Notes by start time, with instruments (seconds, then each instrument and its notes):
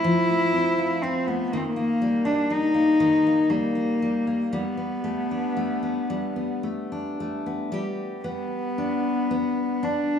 Already playing: steel-string acoustic guitar A3 C4 F4, cello E4
0.04 steel-string acoustic guitar F3
0.30 steel-string acoustic guitar A3
0.54 steel-string acoustic guitar C4
0.78 steel-string acoustic guitar F4
1.02 cello C4, steel-string acoustic guitar C4
1.27 steel-string acoustic guitar A3, cello B3
1.52 steel-string acoustic guitar D#3, cello A#3
1.57 cello C4
1.64 cello A#3
1.76 steel-string acoustic guitar A#3
2.02 steel-string acoustic guitar G3
2.25 cello D4, steel-string acoustic guitar D#4
2.50 steel-string acoustic guitar G3, cello D#4
2.74 steel-string acoustic guitar A#3
3.00 steel-string acoustic guitar D#3
3.27 steel-string acoustic guitar A#3
3.50 steel-string acoustic guitar G3, cello A#3
3.75 steel-string acoustic guitar D#4
4.02 steel-string acoustic guitar G3
4.27 steel-string acoustic guitar A#3
4.53 steel-string acoustic guitar G3, cello B3
4.77 steel-string acoustic guitar B3
5.04 steel-string acoustic guitar A3
5.31 steel-string acoustic guitar D4
5.57 steel-string acoustic guitar A3
5.83 steel-string acoustic guitar B3
6.10 steel-string acoustic guitar G3
6.36 steel-string acoustic guitar B3
6.63 steel-string acoustic guitar A3
6.92 steel-string acoustic guitar D4
7.20 steel-string acoustic guitar A3
7.46 steel-string acoustic guitar B3
7.72 steel-string acoustic guitar G3 G4
8.24 steel-string acoustic guitar B3, cello B3
8.78 steel-string acoustic guitar D4
9.31 steel-string acoustic guitar B3
9.83 steel-string acoustic guitar D4, cello D4